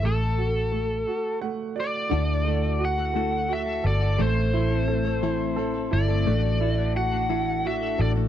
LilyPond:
<<
  \new Staff \with { instrumentName = "Lead electric guitar" } { \time 6/8 \key d \mixolydian \tempo 4. = 58 a'2 r8 d''8~ | d''4 fis''4 e''8 d''8 | c''2~ c''8 d''8~ | d''4 fis''4 e''8 d''8 | }
  \new Staff \with { instrumentName = "Grand piano" } { \time 6/8 \key d \mixolydian a8 fis'8 a8 fis'8 <a fis''>8 <fis' d''>8 | d8 a8 fis'8 a8 fis'8 a'8 | a8 e'8 a'8 e'8 a'8 e'8 | a8 e'8 fis'8 e'8 fis'8 a'8 | }
  \new Staff \with { instrumentName = "Clean electric guitar" } { \time 6/8 \key d \mixolydian r2. | <d a e' fis' a'>8 <a e' fis' a'>16 <e' fis' a'>8 <e' fis' a'>16 <d a e' fis' a'>8 <a e' fis' a'>16 <e' fis' a'>8 <e' fis' a'>16 | <a, e a c' e' a'>8 <a c' e' a'>16 <a c' e' a'>8 <a c' e' a'>16 <a, e a c' e' a'>8 <a c' e' a'>16 <a c' e' a'>8 <a c' e' a'>16 | <a, e a d' fis' a'>8 <a d' fis' a'>16 <a d' fis' a'>8 <a d' fis' a'>16 <a, e a d' fis' a'>8 <a d' fis' a'>16 <a d' fis' a'>8 <a d' fis' a'>16 | }
  \new Staff \with { instrumentName = "Fingered electric bass" } { \clef bass \time 6/8 \key d \mixolydian a,,4. r4. | d,2~ d,8 g,,8 | a,,2~ a,,8 g,,8 | a,,2~ a,,8 a,,8 | }
>>